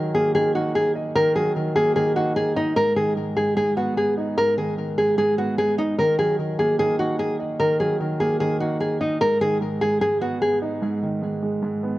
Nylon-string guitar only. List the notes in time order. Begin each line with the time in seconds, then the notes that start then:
0.15 G#4
0.35 G#4
0.55 F#4
0.75 G#4
1.15 A#4
1.35 G#4
1.76 G#4
1.96 G#4
2.16 F#4
2.36 G#4
2.56 D#4
2.76 A#4
2.97 G#4
3.37 G#4
3.57 G#4
3.77 F#4
3.97 G#4
4.38 A#4
4.58 G#4
4.98 G#4
5.18 G#4
5.38 F#4
5.58 G#4
5.78 D#4
5.99 A#4
6.19 G#4
6.59 G#4
6.79 G#4
6.99 F#4
7.19 G#4
7.60 A#4
7.80 G#4
8.20 G#4
8.40 G#4
8.60 F#4
8.80 G#4
9.01 D#4
9.21 A#4
9.41 G#4
9.81 G#4
10.01 G#4
10.21 F#4
10.42 G#4